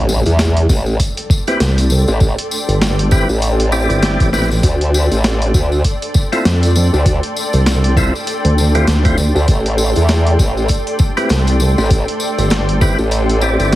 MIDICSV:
0, 0, Header, 1, 7, 480
1, 0, Start_track
1, 0, Key_signature, 0, "minor"
1, 0, Tempo, 606061
1, 1748, Time_signature, 4, 2, 24, 8
1, 10893, End_track
2, 0, Start_track
2, 0, Title_t, "Ambient pad"
2, 0, Program_c, 0, 92
2, 0, Note_on_c, 0, 69, 87
2, 20, Note_on_c, 0, 74, 89
2, 212, Note_on_c, 0, 79, 80
2, 323, Note_on_c, 0, 84, 71
2, 10893, Note_off_c, 0, 69, 0
2, 10893, Note_off_c, 0, 74, 0
2, 10893, Note_off_c, 0, 79, 0
2, 10893, Note_off_c, 0, 84, 0
2, 10893, End_track
3, 0, Start_track
3, 0, Title_t, "Tonewheel organ"
3, 0, Program_c, 1, 16
3, 1169, Note_on_c, 1, 64, 89
3, 1169, Note_on_c, 1, 67, 89
3, 1169, Note_on_c, 1, 71, 107
3, 1170, Note_on_c, 1, 60, 98
3, 1264, Note_off_c, 1, 60, 0
3, 1264, Note_off_c, 1, 64, 0
3, 1264, Note_off_c, 1, 67, 0
3, 1264, Note_off_c, 1, 71, 0
3, 2468, Note_on_c, 1, 60, 78
3, 2468, Note_on_c, 1, 64, 70
3, 2468, Note_on_c, 1, 67, 71
3, 2468, Note_on_c, 1, 71, 83
3, 2601, Note_off_c, 1, 67, 0
3, 2602, Note_off_c, 1, 60, 0
3, 2602, Note_off_c, 1, 64, 0
3, 2602, Note_off_c, 1, 71, 0
3, 2947, Note_on_c, 1, 74, 87
3, 2948, Note_on_c, 1, 60, 77
3, 2948, Note_on_c, 1, 64, 69
3, 2949, Note_on_c, 1, 67, 72
3, 3404, Note_off_c, 1, 60, 0
3, 3404, Note_off_c, 1, 64, 0
3, 3404, Note_off_c, 1, 67, 0
3, 3404, Note_off_c, 1, 74, 0
3, 3427, Note_on_c, 1, 64, 73
3, 3427, Note_on_c, 1, 67, 70
3, 3427, Note_on_c, 1, 71, 86
3, 3428, Note_on_c, 1, 60, 78
3, 3561, Note_off_c, 1, 64, 0
3, 3561, Note_off_c, 1, 67, 0
3, 3561, Note_off_c, 1, 71, 0
3, 3562, Note_off_c, 1, 60, 0
3, 5007, Note_on_c, 1, 60, 93
3, 5007, Note_on_c, 1, 64, 89
3, 5007, Note_on_c, 1, 65, 89
3, 5007, Note_on_c, 1, 69, 107
3, 5103, Note_off_c, 1, 60, 0
3, 5103, Note_off_c, 1, 64, 0
3, 5103, Note_off_c, 1, 65, 0
3, 5103, Note_off_c, 1, 69, 0
3, 6310, Note_on_c, 1, 60, 75
3, 6310, Note_on_c, 1, 64, 69
3, 6310, Note_on_c, 1, 65, 69
3, 6310, Note_on_c, 1, 69, 81
3, 6443, Note_off_c, 1, 60, 0
3, 6443, Note_off_c, 1, 64, 0
3, 6443, Note_off_c, 1, 65, 0
3, 6443, Note_off_c, 1, 69, 0
3, 6930, Note_on_c, 1, 60, 86
3, 6930, Note_on_c, 1, 64, 79
3, 6930, Note_on_c, 1, 65, 77
3, 6931, Note_on_c, 1, 67, 92
3, 7024, Note_off_c, 1, 64, 0
3, 7024, Note_off_c, 1, 65, 0
3, 7025, Note_off_c, 1, 60, 0
3, 7025, Note_off_c, 1, 67, 0
3, 7168, Note_on_c, 1, 60, 82
3, 7168, Note_on_c, 1, 72, 92
3, 7169, Note_on_c, 1, 64, 75
3, 7169, Note_on_c, 1, 65, 77
3, 7263, Note_off_c, 1, 60, 0
3, 7263, Note_off_c, 1, 72, 0
3, 7264, Note_off_c, 1, 64, 0
3, 7264, Note_off_c, 1, 65, 0
3, 8846, Note_on_c, 1, 60, 98
3, 8847, Note_on_c, 1, 64, 90
3, 8847, Note_on_c, 1, 67, 90
3, 8847, Note_on_c, 1, 71, 105
3, 8943, Note_off_c, 1, 60, 0
3, 8943, Note_off_c, 1, 64, 0
3, 8943, Note_off_c, 1, 67, 0
3, 8943, Note_off_c, 1, 71, 0
3, 10148, Note_on_c, 1, 60, 78
3, 10149, Note_on_c, 1, 64, 74
3, 10149, Note_on_c, 1, 67, 68
3, 10149, Note_on_c, 1, 71, 87
3, 10282, Note_off_c, 1, 60, 0
3, 10282, Note_off_c, 1, 64, 0
3, 10282, Note_off_c, 1, 67, 0
3, 10282, Note_off_c, 1, 71, 0
3, 10627, Note_on_c, 1, 64, 69
3, 10628, Note_on_c, 1, 60, 74
3, 10628, Note_on_c, 1, 67, 69
3, 10629, Note_on_c, 1, 74, 85
3, 10893, Note_off_c, 1, 60, 0
3, 10893, Note_off_c, 1, 64, 0
3, 10893, Note_off_c, 1, 67, 0
3, 10893, Note_off_c, 1, 74, 0
3, 10893, End_track
4, 0, Start_track
4, 0, Title_t, "Wobble bass"
4, 0, Program_c, 2, 39
4, 1268, Note_on_c, 2, 36, 98
4, 1626, Note_off_c, 2, 36, 0
4, 2125, Note_on_c, 2, 31, 101
4, 2584, Note_off_c, 2, 31, 0
4, 3087, Note_on_c, 2, 31, 101
4, 3305, Note_off_c, 2, 31, 0
4, 3330, Note_on_c, 2, 33, 97
4, 3653, Note_off_c, 2, 33, 0
4, 5108, Note_on_c, 2, 41, 100
4, 5466, Note_off_c, 2, 41, 0
4, 5969, Note_on_c, 2, 36, 97
4, 6426, Note_off_c, 2, 36, 0
4, 6689, Note_on_c, 2, 38, 94
4, 7012, Note_off_c, 2, 38, 0
4, 7028, Note_on_c, 2, 38, 99
4, 7386, Note_off_c, 2, 38, 0
4, 8950, Note_on_c, 2, 36, 97
4, 9307, Note_off_c, 2, 36, 0
4, 9807, Note_on_c, 2, 31, 95
4, 10265, Note_off_c, 2, 31, 0
4, 10768, Note_on_c, 2, 31, 100
4, 10893, Note_off_c, 2, 31, 0
4, 10893, End_track
5, 0, Start_track
5, 0, Title_t, "Wobble bass"
5, 0, Program_c, 3, 39
5, 0, Note_on_c, 3, 33, 95
5, 186, Note_off_c, 3, 33, 0
5, 205, Note_on_c, 3, 40, 96
5, 531, Note_off_c, 3, 40, 0
5, 549, Note_on_c, 3, 33, 100
5, 772, Note_off_c, 3, 33, 0
5, 1649, Note_on_c, 3, 33, 97
5, 1866, Note_off_c, 3, 33, 0
5, 2607, Note_on_c, 3, 33, 96
5, 3065, Note_off_c, 3, 33, 0
5, 3669, Note_on_c, 3, 38, 92
5, 4026, Note_off_c, 3, 38, 0
5, 4049, Note_on_c, 3, 33, 97
5, 4373, Note_off_c, 3, 33, 0
5, 4390, Note_on_c, 3, 38, 103
5, 4613, Note_off_c, 3, 38, 0
5, 5490, Note_on_c, 3, 38, 98
5, 5707, Note_off_c, 3, 38, 0
5, 7408, Note_on_c, 3, 38, 99
5, 7492, Note_off_c, 3, 38, 0
5, 7510, Note_on_c, 3, 33, 98
5, 7867, Note_off_c, 3, 33, 0
5, 7888, Note_on_c, 3, 40, 93
5, 8212, Note_off_c, 3, 40, 0
5, 8229, Note_on_c, 3, 33, 98
5, 8453, Note_off_c, 3, 33, 0
5, 9330, Note_on_c, 3, 33, 100
5, 9547, Note_off_c, 3, 33, 0
5, 10288, Note_on_c, 3, 33, 92
5, 10746, Note_off_c, 3, 33, 0
5, 10893, End_track
6, 0, Start_track
6, 0, Title_t, "Impact"
6, 0, Program_c, 4, 103
6, 0, Note_on_c, 4, 60, 75
6, 1748, Note_off_c, 4, 60, 0
6, 10893, End_track
7, 0, Start_track
7, 0, Title_t, "Drums"
7, 69, Note_on_c, 9, 54, 87
7, 149, Note_off_c, 9, 54, 0
7, 204, Note_on_c, 9, 54, 36
7, 209, Note_on_c, 9, 42, 38
7, 283, Note_off_c, 9, 54, 0
7, 289, Note_off_c, 9, 42, 0
7, 308, Note_on_c, 9, 54, 50
7, 309, Note_on_c, 9, 38, 118
7, 309, Note_on_c, 9, 42, 83
7, 387, Note_off_c, 9, 54, 0
7, 388, Note_off_c, 9, 38, 0
7, 388, Note_off_c, 9, 42, 0
7, 449, Note_on_c, 9, 42, 56
7, 528, Note_off_c, 9, 42, 0
7, 549, Note_on_c, 9, 36, 105
7, 549, Note_on_c, 9, 54, 85
7, 550, Note_on_c, 9, 40, 39
7, 628, Note_off_c, 9, 36, 0
7, 628, Note_off_c, 9, 54, 0
7, 629, Note_off_c, 9, 40, 0
7, 683, Note_on_c, 9, 54, 33
7, 762, Note_off_c, 9, 54, 0
7, 789, Note_on_c, 9, 36, 64
7, 789, Note_on_c, 9, 42, 85
7, 790, Note_on_c, 9, 54, 55
7, 868, Note_off_c, 9, 36, 0
7, 868, Note_off_c, 9, 42, 0
7, 869, Note_off_c, 9, 54, 0
7, 929, Note_on_c, 9, 42, 56
7, 1008, Note_off_c, 9, 42, 0
7, 1028, Note_on_c, 9, 36, 106
7, 1034, Note_on_c, 9, 54, 85
7, 1108, Note_off_c, 9, 36, 0
7, 1113, Note_off_c, 9, 54, 0
7, 1166, Note_on_c, 9, 54, 40
7, 1170, Note_on_c, 9, 40, 41
7, 1170, Note_on_c, 9, 42, 38
7, 1245, Note_off_c, 9, 54, 0
7, 1249, Note_off_c, 9, 40, 0
7, 1249, Note_off_c, 9, 42, 0
7, 1269, Note_on_c, 9, 38, 116
7, 1269, Note_on_c, 9, 42, 83
7, 1271, Note_on_c, 9, 54, 58
7, 1349, Note_off_c, 9, 38, 0
7, 1349, Note_off_c, 9, 42, 0
7, 1350, Note_off_c, 9, 54, 0
7, 1410, Note_on_c, 9, 42, 60
7, 1411, Note_on_c, 9, 54, 37
7, 1489, Note_off_c, 9, 42, 0
7, 1491, Note_off_c, 9, 54, 0
7, 1504, Note_on_c, 9, 54, 92
7, 1584, Note_off_c, 9, 54, 0
7, 1644, Note_on_c, 9, 54, 42
7, 1723, Note_off_c, 9, 54, 0
7, 1745, Note_on_c, 9, 54, 55
7, 1748, Note_on_c, 9, 36, 126
7, 1825, Note_off_c, 9, 54, 0
7, 1828, Note_off_c, 9, 36, 0
7, 1889, Note_on_c, 9, 42, 85
7, 1968, Note_off_c, 9, 42, 0
7, 1991, Note_on_c, 9, 54, 99
7, 2070, Note_off_c, 9, 54, 0
7, 2128, Note_on_c, 9, 54, 37
7, 2129, Note_on_c, 9, 42, 41
7, 2207, Note_off_c, 9, 54, 0
7, 2208, Note_off_c, 9, 42, 0
7, 2229, Note_on_c, 9, 38, 127
7, 2229, Note_on_c, 9, 42, 88
7, 2237, Note_on_c, 9, 54, 56
7, 2308, Note_off_c, 9, 38, 0
7, 2308, Note_off_c, 9, 42, 0
7, 2317, Note_off_c, 9, 54, 0
7, 2369, Note_on_c, 9, 42, 54
7, 2448, Note_off_c, 9, 42, 0
7, 2464, Note_on_c, 9, 54, 89
7, 2469, Note_on_c, 9, 36, 112
7, 2543, Note_off_c, 9, 54, 0
7, 2548, Note_off_c, 9, 36, 0
7, 2606, Note_on_c, 9, 54, 42
7, 2685, Note_off_c, 9, 54, 0
7, 2709, Note_on_c, 9, 42, 88
7, 2710, Note_on_c, 9, 54, 51
7, 2788, Note_off_c, 9, 42, 0
7, 2790, Note_off_c, 9, 54, 0
7, 2850, Note_on_c, 9, 42, 58
7, 2929, Note_off_c, 9, 42, 0
7, 2948, Note_on_c, 9, 54, 94
7, 3027, Note_off_c, 9, 54, 0
7, 3089, Note_on_c, 9, 42, 37
7, 3090, Note_on_c, 9, 54, 42
7, 3168, Note_off_c, 9, 42, 0
7, 3170, Note_off_c, 9, 54, 0
7, 3187, Note_on_c, 9, 54, 52
7, 3189, Note_on_c, 9, 38, 123
7, 3189, Note_on_c, 9, 40, 36
7, 3189, Note_on_c, 9, 42, 85
7, 3266, Note_off_c, 9, 54, 0
7, 3268, Note_off_c, 9, 38, 0
7, 3268, Note_off_c, 9, 40, 0
7, 3268, Note_off_c, 9, 42, 0
7, 3329, Note_on_c, 9, 36, 108
7, 3329, Note_on_c, 9, 42, 59
7, 3330, Note_on_c, 9, 54, 36
7, 3408, Note_off_c, 9, 36, 0
7, 3408, Note_off_c, 9, 42, 0
7, 3409, Note_off_c, 9, 54, 0
7, 3430, Note_on_c, 9, 40, 51
7, 3435, Note_on_c, 9, 54, 93
7, 3499, Note_off_c, 9, 40, 0
7, 3499, Note_on_c, 9, 40, 41
7, 3514, Note_off_c, 9, 54, 0
7, 3569, Note_off_c, 9, 40, 0
7, 3569, Note_on_c, 9, 40, 35
7, 3574, Note_on_c, 9, 54, 43
7, 3620, Note_off_c, 9, 40, 0
7, 3620, Note_on_c, 9, 40, 28
7, 3653, Note_off_c, 9, 54, 0
7, 3667, Note_on_c, 9, 54, 61
7, 3669, Note_on_c, 9, 36, 122
7, 3670, Note_on_c, 9, 42, 85
7, 3700, Note_off_c, 9, 40, 0
7, 3746, Note_off_c, 9, 54, 0
7, 3748, Note_off_c, 9, 36, 0
7, 3749, Note_off_c, 9, 42, 0
7, 3811, Note_on_c, 9, 42, 56
7, 3890, Note_off_c, 9, 42, 0
7, 3915, Note_on_c, 9, 54, 106
7, 3994, Note_off_c, 9, 54, 0
7, 4051, Note_on_c, 9, 54, 44
7, 4052, Note_on_c, 9, 42, 36
7, 4131, Note_off_c, 9, 42, 0
7, 4131, Note_off_c, 9, 54, 0
7, 4151, Note_on_c, 9, 54, 50
7, 4152, Note_on_c, 9, 38, 127
7, 4152, Note_on_c, 9, 42, 86
7, 4230, Note_off_c, 9, 54, 0
7, 4231, Note_off_c, 9, 38, 0
7, 4231, Note_off_c, 9, 42, 0
7, 4291, Note_on_c, 9, 42, 56
7, 4370, Note_off_c, 9, 42, 0
7, 4390, Note_on_c, 9, 36, 113
7, 4390, Note_on_c, 9, 54, 97
7, 4392, Note_on_c, 9, 40, 36
7, 4469, Note_off_c, 9, 36, 0
7, 4470, Note_off_c, 9, 54, 0
7, 4471, Note_off_c, 9, 40, 0
7, 4530, Note_on_c, 9, 54, 38
7, 4609, Note_off_c, 9, 54, 0
7, 4628, Note_on_c, 9, 54, 51
7, 4630, Note_on_c, 9, 36, 66
7, 4630, Note_on_c, 9, 42, 84
7, 4707, Note_off_c, 9, 54, 0
7, 4709, Note_off_c, 9, 36, 0
7, 4709, Note_off_c, 9, 42, 0
7, 4770, Note_on_c, 9, 42, 53
7, 4850, Note_off_c, 9, 42, 0
7, 4865, Note_on_c, 9, 54, 79
7, 4870, Note_on_c, 9, 36, 104
7, 4944, Note_off_c, 9, 54, 0
7, 4949, Note_off_c, 9, 36, 0
7, 5009, Note_on_c, 9, 40, 39
7, 5009, Note_on_c, 9, 42, 37
7, 5011, Note_on_c, 9, 54, 42
7, 5089, Note_off_c, 9, 40, 0
7, 5089, Note_off_c, 9, 42, 0
7, 5090, Note_off_c, 9, 54, 0
7, 5110, Note_on_c, 9, 54, 58
7, 5111, Note_on_c, 9, 38, 120
7, 5111, Note_on_c, 9, 42, 80
7, 5189, Note_off_c, 9, 54, 0
7, 5190, Note_off_c, 9, 38, 0
7, 5190, Note_off_c, 9, 42, 0
7, 5250, Note_on_c, 9, 42, 59
7, 5250, Note_on_c, 9, 54, 39
7, 5329, Note_off_c, 9, 42, 0
7, 5329, Note_off_c, 9, 54, 0
7, 5351, Note_on_c, 9, 54, 91
7, 5430, Note_off_c, 9, 54, 0
7, 5494, Note_on_c, 9, 54, 43
7, 5573, Note_off_c, 9, 54, 0
7, 5589, Note_on_c, 9, 42, 80
7, 5590, Note_on_c, 9, 36, 126
7, 5593, Note_on_c, 9, 54, 51
7, 5669, Note_off_c, 9, 36, 0
7, 5669, Note_off_c, 9, 42, 0
7, 5672, Note_off_c, 9, 54, 0
7, 5728, Note_on_c, 9, 42, 53
7, 5808, Note_off_c, 9, 42, 0
7, 5833, Note_on_c, 9, 54, 91
7, 5913, Note_off_c, 9, 54, 0
7, 5964, Note_on_c, 9, 54, 45
7, 5970, Note_on_c, 9, 42, 37
7, 6044, Note_off_c, 9, 54, 0
7, 6049, Note_off_c, 9, 42, 0
7, 6070, Note_on_c, 9, 38, 124
7, 6070, Note_on_c, 9, 42, 79
7, 6074, Note_on_c, 9, 54, 52
7, 6149, Note_off_c, 9, 38, 0
7, 6149, Note_off_c, 9, 42, 0
7, 6153, Note_off_c, 9, 54, 0
7, 6210, Note_on_c, 9, 42, 54
7, 6290, Note_off_c, 9, 42, 0
7, 6310, Note_on_c, 9, 36, 109
7, 6313, Note_on_c, 9, 54, 86
7, 6389, Note_off_c, 9, 36, 0
7, 6392, Note_off_c, 9, 54, 0
7, 6457, Note_on_c, 9, 54, 39
7, 6537, Note_off_c, 9, 54, 0
7, 6549, Note_on_c, 9, 54, 55
7, 6550, Note_on_c, 9, 42, 82
7, 6628, Note_off_c, 9, 54, 0
7, 6629, Note_off_c, 9, 42, 0
7, 6690, Note_on_c, 9, 42, 55
7, 6769, Note_off_c, 9, 42, 0
7, 6796, Note_on_c, 9, 54, 82
7, 6875, Note_off_c, 9, 54, 0
7, 6929, Note_on_c, 9, 54, 44
7, 6930, Note_on_c, 9, 42, 36
7, 7008, Note_off_c, 9, 54, 0
7, 7009, Note_off_c, 9, 42, 0
7, 7029, Note_on_c, 9, 38, 125
7, 7029, Note_on_c, 9, 40, 33
7, 7029, Note_on_c, 9, 42, 77
7, 7034, Note_on_c, 9, 54, 57
7, 7108, Note_off_c, 9, 38, 0
7, 7108, Note_off_c, 9, 40, 0
7, 7108, Note_off_c, 9, 42, 0
7, 7114, Note_off_c, 9, 54, 0
7, 7168, Note_on_c, 9, 42, 52
7, 7171, Note_on_c, 9, 36, 109
7, 7171, Note_on_c, 9, 54, 34
7, 7247, Note_off_c, 9, 42, 0
7, 7250, Note_off_c, 9, 36, 0
7, 7250, Note_off_c, 9, 54, 0
7, 7267, Note_on_c, 9, 40, 53
7, 7268, Note_on_c, 9, 54, 83
7, 7346, Note_off_c, 9, 40, 0
7, 7347, Note_off_c, 9, 54, 0
7, 7411, Note_on_c, 9, 54, 41
7, 7490, Note_off_c, 9, 54, 0
7, 7508, Note_on_c, 9, 42, 76
7, 7508, Note_on_c, 9, 54, 50
7, 7510, Note_on_c, 9, 36, 119
7, 7587, Note_off_c, 9, 42, 0
7, 7587, Note_off_c, 9, 54, 0
7, 7589, Note_off_c, 9, 36, 0
7, 7650, Note_on_c, 9, 42, 54
7, 7729, Note_off_c, 9, 42, 0
7, 7745, Note_on_c, 9, 54, 91
7, 7825, Note_off_c, 9, 54, 0
7, 7885, Note_on_c, 9, 54, 43
7, 7889, Note_on_c, 9, 42, 35
7, 7964, Note_off_c, 9, 54, 0
7, 7968, Note_off_c, 9, 42, 0
7, 7987, Note_on_c, 9, 54, 50
7, 7990, Note_on_c, 9, 38, 120
7, 7990, Note_on_c, 9, 42, 79
7, 8066, Note_off_c, 9, 54, 0
7, 8069, Note_off_c, 9, 38, 0
7, 8069, Note_off_c, 9, 42, 0
7, 8130, Note_on_c, 9, 42, 51
7, 8209, Note_off_c, 9, 42, 0
7, 8229, Note_on_c, 9, 40, 38
7, 8230, Note_on_c, 9, 36, 104
7, 8231, Note_on_c, 9, 54, 97
7, 8309, Note_off_c, 9, 36, 0
7, 8309, Note_off_c, 9, 40, 0
7, 8311, Note_off_c, 9, 54, 0
7, 8373, Note_on_c, 9, 54, 34
7, 8452, Note_off_c, 9, 54, 0
7, 8461, Note_on_c, 9, 54, 53
7, 8469, Note_on_c, 9, 42, 75
7, 8470, Note_on_c, 9, 36, 61
7, 8540, Note_off_c, 9, 54, 0
7, 8548, Note_off_c, 9, 42, 0
7, 8549, Note_off_c, 9, 36, 0
7, 8610, Note_on_c, 9, 42, 50
7, 8689, Note_off_c, 9, 42, 0
7, 8702, Note_on_c, 9, 54, 90
7, 8709, Note_on_c, 9, 36, 110
7, 8781, Note_off_c, 9, 54, 0
7, 8788, Note_off_c, 9, 36, 0
7, 8846, Note_on_c, 9, 54, 41
7, 8850, Note_on_c, 9, 40, 38
7, 8850, Note_on_c, 9, 42, 35
7, 8926, Note_off_c, 9, 54, 0
7, 8929, Note_off_c, 9, 40, 0
7, 8929, Note_off_c, 9, 42, 0
7, 8943, Note_on_c, 9, 54, 49
7, 8951, Note_on_c, 9, 38, 118
7, 8951, Note_on_c, 9, 42, 77
7, 9022, Note_off_c, 9, 54, 0
7, 9030, Note_off_c, 9, 38, 0
7, 9030, Note_off_c, 9, 42, 0
7, 9086, Note_on_c, 9, 54, 36
7, 9090, Note_on_c, 9, 42, 55
7, 9165, Note_off_c, 9, 54, 0
7, 9169, Note_off_c, 9, 42, 0
7, 9186, Note_on_c, 9, 54, 94
7, 9265, Note_off_c, 9, 54, 0
7, 9330, Note_on_c, 9, 54, 40
7, 9409, Note_off_c, 9, 54, 0
7, 9427, Note_on_c, 9, 54, 48
7, 9429, Note_on_c, 9, 36, 120
7, 9429, Note_on_c, 9, 42, 75
7, 9507, Note_off_c, 9, 54, 0
7, 9508, Note_off_c, 9, 36, 0
7, 9508, Note_off_c, 9, 42, 0
7, 9569, Note_on_c, 9, 42, 53
7, 9648, Note_off_c, 9, 42, 0
7, 9661, Note_on_c, 9, 54, 82
7, 9740, Note_off_c, 9, 54, 0
7, 9807, Note_on_c, 9, 54, 39
7, 9809, Note_on_c, 9, 42, 37
7, 9887, Note_off_c, 9, 54, 0
7, 9889, Note_off_c, 9, 42, 0
7, 9901, Note_on_c, 9, 54, 48
7, 9909, Note_on_c, 9, 38, 120
7, 9909, Note_on_c, 9, 42, 77
7, 9981, Note_off_c, 9, 54, 0
7, 9988, Note_off_c, 9, 38, 0
7, 9988, Note_off_c, 9, 42, 0
7, 10049, Note_on_c, 9, 42, 49
7, 10129, Note_off_c, 9, 42, 0
7, 10148, Note_on_c, 9, 54, 81
7, 10149, Note_on_c, 9, 36, 106
7, 10227, Note_off_c, 9, 54, 0
7, 10228, Note_off_c, 9, 36, 0
7, 10284, Note_on_c, 9, 54, 37
7, 10363, Note_off_c, 9, 54, 0
7, 10384, Note_on_c, 9, 54, 50
7, 10389, Note_on_c, 9, 42, 75
7, 10464, Note_off_c, 9, 54, 0
7, 10468, Note_off_c, 9, 42, 0
7, 10529, Note_on_c, 9, 42, 54
7, 10609, Note_off_c, 9, 42, 0
7, 10624, Note_on_c, 9, 54, 73
7, 10703, Note_off_c, 9, 54, 0
7, 10767, Note_on_c, 9, 54, 41
7, 10769, Note_on_c, 9, 42, 37
7, 10846, Note_off_c, 9, 54, 0
7, 10849, Note_off_c, 9, 42, 0
7, 10868, Note_on_c, 9, 54, 50
7, 10893, Note_off_c, 9, 54, 0
7, 10893, End_track
0, 0, End_of_file